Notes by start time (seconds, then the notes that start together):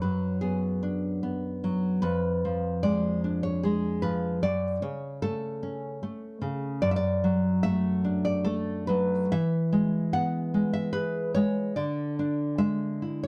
Already playing: F#2
0.02 F#3 B4
0.41 B3 G#4
0.83 D4
1.23 B3
1.64 F#3
2.02 F2 B4
2.45 F3
2.83 G#3 D5
3.24 D4
3.43 C#5
3.63 G#3 G#4
4.02 F3 B4
4.43 F#2 D5
4.82 C#3 C#5
5.22 A3 A4
5.63 C#4
6.03 A3
6.42 C#3
6.82 F#2 D5
6.91 E5
6.96 D5
7.24 F#3
7.63 A3 E5
8.04 D4
8.25 D5
8.44 A3 A4
8.87 F#3 B4
9.32 E3 E5
9.73 G#3
10.13 B3 F#5
10.54 G#3
10.73 E5
10.93 G#4 B4
11.35 G#3 C#5
11.76 D3 D5
12.19 D4
12.58 G#3 E5
13.02 E4
13.23 C#5